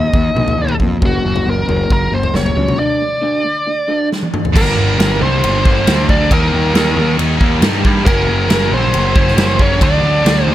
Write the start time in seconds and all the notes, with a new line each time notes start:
Already playing: D#3 A#3 D#5
0.14 D#2 D#3 A#3, kick
0.35 A#1 D#3 A#3 D#4, mid tom
0.48 floor tom
0.57 D#2 D#3 A#3
0.68 floor tom
0.80 F2 D#3 A#3, kick
1.01 F#1 F#3 A#3 C#4, kick, floor tom
1.06 F#4
1.23 F#1 F#3 A#3
1.36 floor tom
1.46 F#1 F#3 A#3
1.50 A#4
1.68 F#1 F#3 A#3 C#4, floor tom
1.89 F#1 F#3 A#3 A#4, kick
2.11 F#1 F#3 A#3 C5
2.23 floor tom
2.33 F#1 F#3 A#3 C#5, snare
2.46 floor tom
2.56 C#2 F#3 A#3 C#4
2.68 mid tom
2.79 D3 A3 D4 D5
3.01 D3 A3
3.21 D3 A3 D4
3.44 D3 A3
3.67 D3 A3
3.88 D3 A3 D4
4.11 D3 A3, snare
4.23 high tom
4.34 D3 A3, mid tom
4.45 floor tom
4.54 G1 G2 D3 G3 A#3 D4 A#4, kick, crash
4.77 G1
4.98 G1 G2 D3 G3 A#3 D4, snare, ride bell
5.21 C2 C5
5.44 G1, ride bell
5.63 G1 G3 A#3 D4, kick
5.84 D2 D3 G3 A#3 D4, snare, ride bell
6.07 G3 A#3 D4 D5, kick
6.29 D#2 D#3 G3 A#3 D#4 A#4, kick, ride bell
6.53 D#2
6.72 D#2 D#3 G3 A#3 D#4, ride bell
6.76 snare
6.97 D#2
7.18 D#2, ride bell
7.37 D#2 G3 A#3 D#4, kick
7.59 G2 D#3 G3 A#3 D#4, snare, ride bell
7.82 G2 G3 A#3 D#4, kick
8.04 F#1 F#2 C#3 F#3 A#3 C#4 A#4, kick, ride bell
8.28 F#1
8.48 F#1 F#2 C#3 F#3 A#3 C#4, snare, ride bell
8.72 A#1 C5
8.94 F#1, ride bell
9.14 F#1 F#3 A#3 C#4, kick
9.28 snare
9.36 F#1 C#3 F#3 A#3 C#4, snare, ride bell
9.57 A#3 C#4, kick
9.61 F#3 C#5
9.79 D2 D3 F#3 A3 D4, kick, ride bell
9.84 D5
10.02 D2
10.23 D2 D3 F#3 A3 D4, snare, ride bell
10.43 C5
10.47 D2